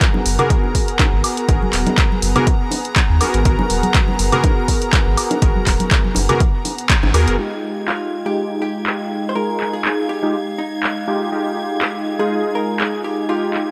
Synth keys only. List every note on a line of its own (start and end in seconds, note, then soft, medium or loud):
0.00 0.36 B3 medium
0.00 0.36 F#4 medium
0.00 0.36 G#4 medium
0.00 0.36 A#4 medium
0.39 1.46 B3 medium
0.39 1.46 F#4 medium
0.39 1.46 G#4 medium
0.39 1.46 A#4 loud
1.48 2.32 B3 medium
1.48 2.32 F#4 medium
1.48 2.33 G#4 medium
1.48 2.33 A#4 medium
2.36 2.48 B3 loud
2.36 2.48 F#4 medium
2.36 2.48 G#4 medium
2.36 2.48 A#4 loud
3.21 3.43 B3 medium
3.21 3.43 F#4 medium
3.21 3.43 G#4 medium
3.21 3.43 A#4 medium
3.45 4.29 B3 medium
3.45 4.29 F#4 medium
3.45 4.29 G#4 medium
3.45 4.29 A#4 medium
4.32 5.39 B3 medium
4.32 5.39 F#4 medium
4.32 5.39 G#4 medium
4.32 5.40 A#4 loud
5.42 6.26 B3 medium
5.42 6.26 F#4 medium
5.42 6.26 G#4 medium
5.42 6.26 A#4 medium
6.29 6.41 B3 medium
6.29 6.41 F#4 medium
6.29 6.41 G#4 medium
6.29 6.41 A#4 loud
7.14 7.36 B3 loud
7.14 7.36 F#4 medium
7.14 7.36 G#4 medium
7.14 7.36 A#4 loud
7.38 8.23 G#3 medium
7.38 8.23 D#4 medium
7.38 8.23 F4 medium
7.38 8.23 G4 medium
8.26 9.33 G#3 medium
8.26 9.33 D#4 medium
8.26 9.33 F4 medium
8.26 9.33 G4 medium
9.35 10.19 G#3 medium
9.35 10.19 D#4 medium
9.35 10.19 F4 medium
9.35 10.20 G#4 medium
10.22 10.35 G#3 medium
10.22 10.35 D#4 medium
10.22 10.35 F4 medium
10.22 10.35 G4 loud
11.07 11.29 G#3 medium
11.07 11.29 D#4 medium
11.07 11.30 F4 medium
11.07 11.30 G4 medium
11.32 12.16 G#3 medium
11.32 12.16 D#4 medium
11.32 12.16 F4 medium
11.32 12.16 G4 medium
12.19 13.26 G#3 medium
12.19 13.26 D#4 medium
12.19 13.26 F4 medium
12.19 13.26 G#4 medium
13.29 13.71 G#3 medium
13.29 13.71 D#4 medium
13.29 13.71 F4 medium
13.29 13.71 G4 medium